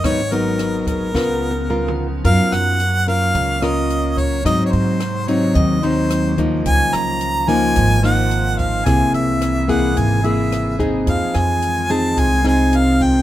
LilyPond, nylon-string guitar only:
\new Staff \with { instrumentName = "Nylon-string guitar" } { \time 4/4 \key ges \lydian \tempo 4 = 109 << { <ges ces' ees'>8 <ges ces' ees'>4. <ces' f' bes'>8 r8 <ces' f' bes'>8 r8 | <des' f' bes'>4 r8 <des' f' bes'>4 <des' f' bes'>4. | <ges c' ees'>4 r8 <ges c' ees'>4 <ges c' ees'>4 <f bes ees'>8~ | <f bes ees'>4. <f bes ees'>4 <f bes ees'>4. |
<bes e' gis'>4. <bes e' gis'>4 <bes e' gis'>4 <c' dis' gis'>8~ | <c' dis' gis'>4. <c' ees' aes'>4 <c' ees' aes'>4. | } \\ { aes,2 des2 | ges2 des2 | aes,2 ees2 | des2 aes,2 |
c2 c2 | f2 c2 | } >> }